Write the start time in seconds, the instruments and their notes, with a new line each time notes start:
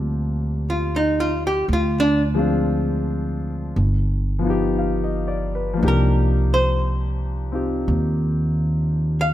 Already playing: upright bass D2, grand piano F3 G3 A#3 C4 D4 F4 G4
0.70 hollow-body jazz guitar F4
0.96 hollow-body jazz guitar D#4
1.20 hollow-body jazz guitar F4
1.47 hollow-body jazz guitar G4
1.68 upright bass D2
1.73 hollow-body jazz guitar F4
2.00 hollow-body jazz guitar D4
2.34 grand piano F3 G#3 C4 D4
2.39 grand piano F4
3.76 upright bass G1
4.39 grand piano F3 B3
4.45 grand piano D#4 F4
4.50 grand piano G4
4.78 grand piano F5
5.04 grand piano D#5
5.28 grand piano D5
5.55 grand piano B4
5.73 grand piano F3 A#3
5.79 upright bass C2, grand piano D4 D#4
5.84 grand piano G4, hollow-body jazz guitar A#4
6.54 hollow-body jazz guitar C5
7.52 grand piano C4 D#4 F4 G4
7.88 upright bass D#2
9.21 hollow-body jazz guitar F5